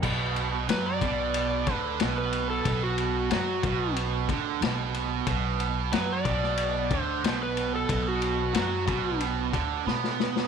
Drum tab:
CC |x---------------|----------------|----------------|----------------|
RD |--x-x-x-x-x-x-x-|x-x-x-x-x-x-x-x-|x-x-x-x-x-x-x-x-|x-x-x-x-x-x-----|
SD |----o-------o---|----o-------o---|----o--o----o---|----o-------oooo|
BD |o-----o---o-----|o-----o---o-----|o-----o---o-----|o-----o---o-----|